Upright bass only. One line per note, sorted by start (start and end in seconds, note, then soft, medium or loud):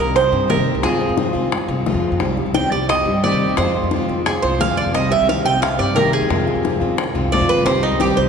0.00 0.31 C2 medium
0.32 0.56 G2 loud
0.57 0.74 C2 medium
0.75 0.83 C2 medium
0.84 1.08 F2 medium
1.09 1.33 F2 medium
1.35 1.67 F2 medium
1.68 1.93 C2 loud
1.94 2.11 F2 medium
2.12 2.20 F2 medium
2.21 2.45 C2 loud
2.46 2.70 C2 medium
2.72 3.04 C2 medium
3.05 3.30 G2 medium
3.32 3.48 C2 medium
3.49 3.57 C2 medium
3.58 3.82 F2 loud
3.83 4.07 F2 medium
4.09 4.41 F2 medium
4.43 4.67 C2 medium
4.69 4.85 F2 loud
4.86 4.93 F2 medium
4.95 5.18 C2 medium
5.20 5.44 C2 medium
5.45 5.77 C2 medium
5.79 6.03 G2 loud
6.05 6.21 C2 medium
6.22 6.30 E2 medium
6.30 6.54 F2 medium
6.55 6.80 F2 medium
6.81 7.13 F2 medium
7.15 7.39 C2 loud
7.41 7.56 F2 loud
7.57 7.65 G2 loud
7.65 7.90 C2 loud
7.91 8.16 C2 medium
8.17 8.29 C2 medium